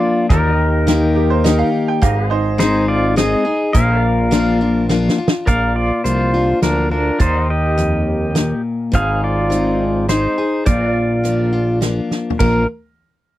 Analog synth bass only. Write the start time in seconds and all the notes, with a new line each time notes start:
0.30 D#2
2.03 G#1
3.75 A#1
5.47 A#1
6.05 C2
6.62 D2
7.20 D#2
8.93 G#1
10.67 A#1
12.40 A#1